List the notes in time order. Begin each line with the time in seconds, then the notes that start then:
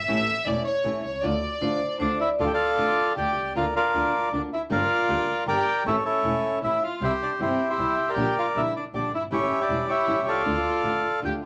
Already playing: E5
0.08 A1 E3 A3 C#4 E4
0.45 E1 E3 A3 C#4 E4 D5
0.66 C#5
0.84 A1 E3 A3 C#4 E4
1.04 C2 C#5
1.23 D2 D3 A3 D4 F4 D5
1.61 A1 D3 A3 D4 F4 C5
2.00 D2 D3 A3 D4 F4 C5 D5
2.20 E4 D5 E5
2.39 D2 D3 A3 D4 F4 A4 D5 F5
2.46 G4 G5
2.53 F4 A4 D5 F5
2.77 A1 D3 A3 D4 F4
3.16 D2 D3 A3 D4 F4 G4 D5 G5
3.36 C2
3.55 D2 D3 A#3 D4 F4 A#4 D5 F5
3.76 D4 F4 A#4 D5
3.94 D2 D3 A#3 D4 F4
4.32 D2 D3 A#3 D4 F4 D5
4.53 E4 E5
4.70 G1 D3 G3 A#3 D4 F4 G4 A#4 D5 F5
5.08 D2 D3 G3 A#3 D4 G4
5.46 G1 D3 G3 A#3 D4 G4 A#4 D5 G5
5.85 A1 E3 A3 C#4 E4 A4 C#5 E5
6.05 C#4 E4 A4 C#5
6.23 E1 E3 A3 C#4 E4
6.62 A1 E3 A3 C#4 E4 E5
6.84 F4 F5
7.00 C2 C3 E3 G3 C4 E4 G4 C5 E5
7.05 E4
7.23 D4 D5
7.39 G1 C3 E3 G3 C4 E4 G4 C5
7.70 E4 G4 C5 E5
7.77 C2 C3 E3 G3 C4 E4
8.09 G4 A#4 D5 G5
8.16 A#1 D3 G3 D4 G4
8.38 F4 F5
8.55 A#1 D3 G3 D4 E4 G4 E5
8.76 D4 D5
8.93 A#1 D3 G3 D4 G4 D5
9.12 G1 E4 E5
9.31 A1 E3 G3 C#4 E4 G4 C#5
9.61 D4 G4 D5
9.69 E1 E3 G3 C#4 E4
9.89 E4 G4 C#5 E5
10.07 A1 E3 G3 C#4 E4
10.27 C2 F4 A4 D5 F5
10.45 D2 D3 A3 D4 F4
10.83 A1 D3 A3 D4 F4
11.22 D2 D3 A3 D4 F4 G4 G5